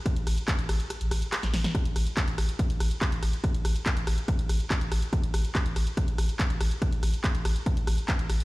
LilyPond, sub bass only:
\new Staff \with { instrumentName = "Sub bass" } { \clef bass \time 4/4 \key c \major \tempo 4 = 142 r16 a,,16 a,,16 r8 a,,16 a,,16 r8 a,,16 a,,16 r8 a,,16 a,,16 r16 | r16 a,,16 a,,16 r8 a,,16 a,,16 r8 a,,16 a,,16 r8 a,,16 a,,16 r16 | r16 a,,16 a,,16 r8 a,,16 a,,16 r8 a,,16 a,,16 r8 a,,16 a,,16 r16 | r16 a,,16 a,,16 r8 a,,16 a,,16 r8 a,,16 a,,16 r8 a,,16 a,,16 r16 |
r16 a,,16 a,,16 r8 a,,16 a,,16 r8 a,,16 a,,16 r8 a,,16 a,,16 r16 | }